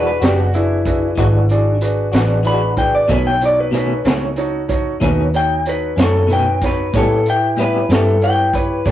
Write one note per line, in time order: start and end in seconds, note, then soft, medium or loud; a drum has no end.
0.00 0.19 E1 medium
0.00 0.14 D4 medium
0.00 0.14 F#4 soft
0.00 0.14 G#4 soft
0.00 0.14 B4 medium
0.07 0.22 B4 medium
0.20 1.15 F#1 medium
0.20 0.41 G#3 soft
0.20 0.41 D4 soft
0.20 0.46 D4 medium
0.20 0.40 F#4 soft
0.20 0.46 F#4 soft
0.20 0.40 G4 medium
0.20 0.46 G#4 soft
0.20 0.46 B4 medium
0.20 snare loud
0.20 closed hi-hat medium
0.40 0.54 F#4 medium
0.54 0.78 D4 medium
0.54 1.78 E4 medium
0.54 0.78 F#4 soft
0.54 0.78 G#4 soft
0.54 0.78 B4 medium
0.54 closed hi-hat medium
0.85 1.09 D4 soft
0.85 1.10 F#4 soft
0.85 1.09 G#4 soft
0.85 1.10 B4 medium
0.85 kick medium
0.85 closed hi-hat medium
1.16 2.11 G#1 medium
1.16 1.36 E3 medium
1.16 1.36 G#3 medium
1.16 1.37 D4 medium
1.16 1.42 D4 soft
1.16 1.42 F#4 soft
1.16 1.37 F#4 medium
1.16 1.42 G#4 soft
1.16 1.42 B4 medium
1.16 kick medium
1.16 closed hi-hat medium
1.49 1.74 D4 medium
1.49 1.74 F#4 medium
1.49 1.74 G#4 medium
1.49 1.74 D5 medium
1.49 closed hi-hat medium
1.81 2.06 D4 medium
1.81 2.05 F#4 soft
1.81 2.06 G#4 soft
1.81 2.06 B4 medium
1.81 closed hi-hat medium
2.12 3.07 A1 medium
2.12 2.33 G#3 soft
2.12 2.32 D4 soft
2.12 2.38 D4 medium
2.12 2.32 F#4 soft
2.12 2.38 F#4 medium
2.12 2.38 G#4 soft
2.12 2.38 B4 medium
2.12 snare loud
2.12 closed hi-hat medium
2.43 2.64 E3 soft
2.43 2.64 G#3 medium
2.43 2.65 D4 medium
2.43 2.70 D4 soft
2.43 2.69 F#4 soft
2.43 2.65 F#4 medium
2.43 2.70 G#4 soft
2.43 2.69 B4 medium
2.43 2.77 B5 medium
2.43 closed hi-hat medium
2.77 3.01 D4 medium
2.77 3.01 F#4 soft
2.77 3.01 G#4 soft
2.77 3.02 B4 medium
2.77 2.93 G5 medium
2.77 kick medium
2.77 closed hi-hat soft
2.95 3.10 D5 medium
3.08 4.03 B1 medium
3.08 3.28 B2 medium
3.08 3.28 D#3 medium
3.08 3.28 A3 medium
3.08 3.29 C#4 medium
3.08 3.33 D#4 soft
3.08 3.33 F#4 soft
3.08 3.34 A4 medium
3.08 3.26 B4 medium
3.08 3.34 C#5 medium
3.08 kick loud
3.08 closed hi-hat medium
3.27 3.42 G5 medium
3.41 3.66 D#4 soft
3.41 3.66 F#4 soft
3.41 3.66 A4 soft
3.41 3.66 C#5 medium
3.41 closed hi-hat soft
3.45 3.59 D5 medium
3.60 3.74 B4 medium
3.71 3.92 B2 medium
3.71 3.92 D#3 medium
3.71 3.93 A3 medium
3.71 3.93 C#4 medium
3.71 3.97 D#4 soft
3.71 3.98 F#4 soft
3.71 3.97 A4 medium
3.71 3.98 C#5 medium
3.71 closed hi-hat medium
3.77 4.06 B4 medium
4.04 4.99 C#2 medium
4.04 4.26 D#3 soft
4.04 4.25 A3 soft
4.04 4.24 C#4 soft
4.04 4.29 D#4 soft
4.04 4.30 F#4 soft
4.04 4.30 A4 soft
4.04 4.30 C#5 medium
4.04 snare medium
4.04 closed hi-hat medium
4.36 4.61 D#4 medium
4.36 4.62 F#4 medium
4.36 4.62 A4 medium
4.36 4.62 C#5 medium
4.36 closed hi-hat soft
4.68 4.93 D#4 medium
4.68 4.93 F#4 medium
4.68 4.93 A4 medium
4.68 4.93 C#5 medium
4.68 kick medium
4.68 closed hi-hat medium
5.00 5.95 D#2 medium
5.00 5.20 B2 medium
5.00 5.20 D#3 medium
5.00 5.21 A3 medium
5.00 5.21 C#4 medium
5.00 5.25 D#4 medium
5.00 5.25 F#4 medium
5.00 5.26 A4 medium
5.00 5.26 B4 medium
5.00 kick medium
5.00 closed hi-hat medium
5.34 5.58 D#4 soft
5.34 5.58 F#4 soft
5.34 5.58 A4 soft
5.34 5.58 C#5 medium
5.34 5.66 G5 medium
5.34 closed hi-hat medium
5.65 5.90 D#4 soft
5.65 5.90 F#4 soft
5.65 5.90 A4 soft
5.65 5.98 B4 medium
5.65 5.90 C#5 medium
5.65 closed hi-hat medium
5.96 6.90 F#2 medium
5.96 6.18 D#3 soft
5.96 6.17 A3 soft
5.96 6.16 C#4 soft
5.96 6.22 D#4 soft
5.96 6.22 F#4 soft
5.96 6.22 A4 soft
5.96 6.22 C#5 medium
5.96 snare loud
5.96 closed hi-hat medium
6.02 6.31 A4 medium
6.27 6.48 B2 medium
6.27 6.48 D#3 medium
6.27 6.49 A3 medium
6.27 6.49 C#4 medium
6.27 6.54 D#4 medium
6.27 6.54 F#4 medium
6.27 6.54 A4 soft
6.27 6.54 B4 medium
6.27 closed hi-hat medium
6.33 6.62 G5 medium
6.62 6.86 D#4 medium
6.62 6.86 F#4 medium
6.62 6.86 A4 medium
6.62 6.95 B4 medium
6.62 6.87 C#5 medium
6.62 kick medium
6.62 snare soft
6.62 closed hi-hat medium
6.93 7.12 A2 medium
6.93 7.87 A2 medium
6.93 7.13 G3 medium
6.93 7.13 B3 medium
6.93 7.14 C#4 medium
6.93 7.18 E4 medium
6.93 7.18 G4 soft
6.93 7.18 B4 medium
6.93 7.18 C#5 medium
6.93 kick medium
6.93 closed hi-hat medium
6.97 7.26 A4 medium
7.26 7.51 E4 soft
7.26 7.51 G4 soft
7.26 7.51 B4 soft
7.26 7.51 E5 medium
7.26 7.59 G5 medium
7.26 closed hi-hat soft
7.57 7.76 A2 medium
7.57 7.77 G3 medium
7.57 7.78 B3 medium
7.57 7.78 C#4 medium
7.57 7.82 E4 medium
7.57 7.83 G4 soft
7.57 7.82 B4 soft
7.57 7.90 B4 medium
7.57 7.82 E5 medium
7.57 closed hi-hat medium
7.88 8.82 G2 medium
7.88 8.10 G3 soft
7.88 8.09 B3 soft
7.88 8.08 C#4 soft
7.88 8.14 E4 soft
7.88 8.14 G4 soft
7.88 8.14 B4 soft
7.88 8.15 E5 medium
7.88 snare loud
7.88 closed hi-hat medium
7.92 8.22 A4 medium
8.22 8.46 E4 medium
8.22 8.46 G4 soft
8.22 8.46 B4 soft
8.22 8.46 C#5 medium
8.22 8.54 G5 medium
8.22 closed hi-hat medium
8.53 8.78 E4 soft
8.53 8.77 G4 soft
8.53 8.78 B4 soft
8.53 8.85 B4 medium
8.53 8.78 C#5 medium
8.53 kick medium
8.53 closed hi-hat medium
8.85 8.91 A2 medium
8.85 8.91 G3 medium
8.85 8.91 B3 medium
8.85 8.91 C#4 medium
8.85 8.91 E4 medium
8.85 8.91 G4 soft
8.85 8.91 B4 soft
8.85 8.91 C#5 medium
8.85 kick medium
8.85 closed hi-hat medium